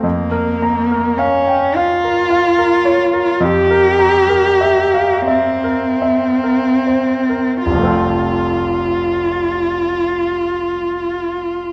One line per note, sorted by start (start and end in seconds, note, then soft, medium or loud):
0.02 3.37 F2 soft
0.02 1.19 A#3 soft
0.31 0.78 A#4 soft
0.62 1.08 A#5 soft
0.91 1.37 A#4 soft
1.17 1.77 C#4 soft
1.17 1.64 F5 soft
1.48 1.76 G5 soft
1.75 3.45 F4 medium
1.75 2.20 F5 soft
2.04 2.47 A#4 soft
2.30 2.74 F5 soft
2.58 3.02 A#4 soft
2.85 3.29 C#5 soft
3.13 3.41 A#4 soft
3.40 7.61 F2 soft
3.40 5.28 G4 medium
3.70 4.18 A#4 soft
3.99 4.49 A#5 soft
4.29 4.81 A#4 soft
4.61 5.14 E5 soft
4.94 5.28 F5 soft
5.28 7.62 C4 soft
5.28 5.86 E5 soft
5.64 6.26 A#4 soft
6.02 6.69 E5 soft
6.43 7.13 A#4 soft
6.87 7.51 C5 soft
7.29 7.66 A#4 soft
7.65 11.73 F1 soft
7.65 11.73 F4 soft
7.70 11.73 C2 soft
7.75 11.73 F3 soft
7.79 11.73 A3 soft
7.83 11.73 C4 soft
7.87 11.73 F4 soft